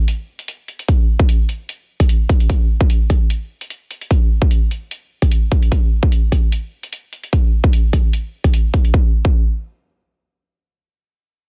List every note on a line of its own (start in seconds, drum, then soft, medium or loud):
0.08 closed hi-hat medium
0.39 closed hi-hat soft
0.48 closed hi-hat medium
0.68 closed hi-hat soft
0.79 closed hi-hat soft
0.88 kick loud
0.88 closed hi-hat medium
1.19 kick loud
1.29 closed hi-hat medium
1.49 closed hi-hat soft
1.69 closed hi-hat medium
2.00 kick medium
2.00 closed hi-hat soft
2.09 closed hi-hat medium
2.29 kick loud
2.29 closed hi-hat soft
2.40 closed hi-hat soft
2.50 kick loud
2.50 closed hi-hat medium
2.81 kick loud
2.90 closed hi-hat medium
3.10 kick medium
3.10 closed hi-hat soft
3.30 closed hi-hat medium
3.61 closed hi-hat soft
3.70 closed hi-hat medium
3.91 closed hi-hat soft
4.01 closed hi-hat soft
4.11 kick loud
4.11 closed hi-hat medium
4.42 kick medium
4.51 closed hi-hat medium
4.71 closed hi-hat soft
4.91 closed hi-hat medium
5.22 kick medium
5.22 closed hi-hat soft
5.31 closed hi-hat medium
5.52 kick medium
5.52 closed hi-hat soft
5.63 closed hi-hat soft
5.72 kick loud
5.72 closed hi-hat medium
6.03 kick medium
6.12 closed hi-hat medium
6.32 kick medium
6.32 closed hi-hat soft
6.52 closed hi-hat medium
6.83 closed hi-hat soft
6.93 closed hi-hat medium
7.13 closed hi-hat soft
7.24 closed hi-hat soft
7.33 kick loud
7.33 closed hi-hat medium
7.64 kick medium
7.73 closed hi-hat medium
7.93 kick medium
7.93 closed hi-hat soft
8.13 closed hi-hat medium
8.44 kick medium
8.44 closed hi-hat soft
8.54 closed hi-hat medium
8.74 kick medium
8.74 closed hi-hat soft
8.85 closed hi-hat soft
8.94 kick loud
9.25 kick loud